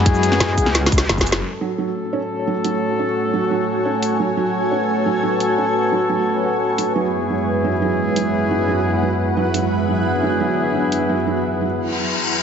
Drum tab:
HH |x-----x-----x-----o-----x-----x-----x-----o-----|------------------------------------------o-----|------------------------------------------o-----|------------------------------------------o-----|
SH |---x--x-----------x-----------x--------x--x-----|------------------------------------------------|------------------------------------------------|------------------------------------------------|
SD |---------o--o--------o--o---o---o---o---o---o---|------------------------------------------------|------------------------------------------------|------------------------------------------------|
BD |o-----------------o-----------o--------o--------|------------------------------------------------|------------------------------------------------|------------------------------------------------|

HH |------------------------------------------o-----|------------------------------------------o-----|------------------------------------------o-----|------------------------------------------o-----|
SH |------------------------------------------------|------------------------------------------------|------------------------------------------------|------------------------------------------------|
SD |------------------------------------------------|------------------------------------------------|------------------------------------------------|------------------------------------------------|
BD |------------------------------------------------|------------------------------------------------|------------------------------------------------|------------------------------------------------|

HH |------------------------------------------------|
SH |------------------------------------------------|
SD |------------------------------------------------|
BD |------------------------------------------------|